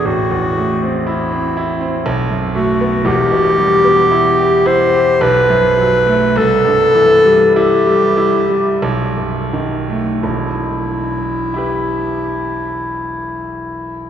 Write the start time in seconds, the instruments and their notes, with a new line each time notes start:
0.05 grand piano A1, clarinet F#4
0.31 grand piano E2
0.57 grand piano A3
0.82 grand piano C4
1.06 clarinet E4, grand piano E4
1.32 grand piano C4
1.57 grand piano E4
1.81 grand piano C4
2.06 grand piano B1
2.31 grand piano F#2
2.55 grand piano A3, clarinet F#4
2.81 grand piano B3
3.05 grand piano E1 E2, clarinet G4
3.32 grand piano B2
3.58 grand piano G3
3.84 grand piano B3
4.11 grand piano E4
4.39 grand piano G4
4.66 grand piano E4, clarinet C5
4.93 grand piano G4
5.21 grand piano B1, clarinet B4
5.50 grand piano F#2
5.78 grand piano F#3
6.07 grand piano A3
6.36 grand piano C2, clarinet A4
6.65 grand piano G2
6.95 grand piano E3
7.26 grand piano G3
7.55 grand piano E4, clarinet G4
7.86 grand piano G3
8.17 grand piano E4
8.49 grand piano G3
8.82 grand piano B1
9.17 grand piano F#2
9.53 grand piano D#3
9.90 grand piano A3
10.22 grand piano E1 B1, clarinet E4
11.54 grand piano E4 G4
11.58 grand piano B4